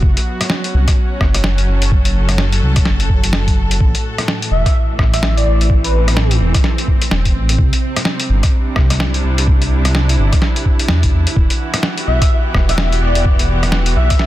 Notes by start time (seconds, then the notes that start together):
Already playing: B3 F#4
0.02 F#1 F#3, kick
0.17 closed hi-hat
0.40 C#4, cross-stick, closed hi-hat
0.50 snare
0.64 closed hi-hat
0.74 C2
0.88 kick, cross-stick, closed hi-hat
1.21 F#1, kick, cross-stick
1.34 cross-stick, closed hi-hat
1.44 snare
1.58 closed hi-hat
1.68 F#1
1.74 A4
1.82 closed hi-hat
1.92 kick
2.05 closed hi-hat
2.29 cross-stick, closed hi-hat
2.38 snare
2.52 closed hi-hat
2.63 C2
2.76 kick, cross-stick, closed hi-hat
2.85 F#1, snare
3.00 closed hi-hat
3.10 kick
3.24 F#1, closed hi-hat
3.33 snare
3.48 kick, closed hi-hat
3.71 closed hi-hat
3.81 A1 A2, kick
3.95 closed hi-hat
4.18 cross-stick, closed hi-hat
4.28 snare
4.39 E3, closed hi-hat
4.51 E1 E5
4.66 kick, cross-stick, closed hi-hat
4.99 A1, kick, cross-stick
5.13 E5, cross-stick, closed hi-hat
5.23 C4, snare
5.37 D5, closed hi-hat
5.46 A1
5.61 closed hi-hat
5.70 kick
5.84 B4, closed hi-hat
6.08 cross-stick, closed hi-hat
6.17 snare
6.31 closed hi-hat
6.41 E1
6.54 kick, cross-stick, closed hi-hat
6.64 snare
6.78 closed hi-hat
6.88 kick
7.02 closed hi-hat
7.11 E1, snare
7.25 kick, closed hi-hat
7.35 A1
7.49 closed hi-hat
7.59 C2 C3, kick
7.73 closed hi-hat
7.96 G3, cross-stick, closed hi-hat
8.05 snare
8.20 closed hi-hat
8.29 G1
8.37 D4
8.43 kick, cross-stick, closed hi-hat
8.76 C2, kick, cross-stick
8.90 E4, cross-stick, closed hi-hat
9.00 snare
9.14 closed hi-hat
9.24 C2
9.38 closed hi-hat
9.48 kick
9.62 closed hi-hat
9.85 cross-stick, closed hi-hat
9.95 snare
10.09 closed hi-hat
10.18 G1
10.33 kick, cross-stick, closed hi-hat
10.42 snare
10.56 closed hi-hat
10.66 kick
10.79 closed hi-hat
10.88 E2, snare
11.03 G1, kick, closed hi-hat
11.13 E2
11.27 closed hi-hat
11.36 E1 E3, kick
11.50 B3, closed hi-hat
11.55 F#4
11.74 cross-stick, closed hi-hat
11.83 snare
11.90 G4
11.98 closed hi-hat
12.07 B1 E5
12.22 kick, cross-stick, closed hi-hat
12.54 E1, kick, cross-stick
12.69 E5, cross-stick, closed hi-hat
12.78 snare
12.92 closed hi-hat
13.02 E1 D5
13.15 closed hi-hat
13.25 kick
13.39 closed hi-hat
13.63 cross-stick, closed hi-hat
13.72 snare
13.86 closed hi-hat
13.96 B1 E5
14.10 kick, cross-stick, closed hi-hat
14.19 snare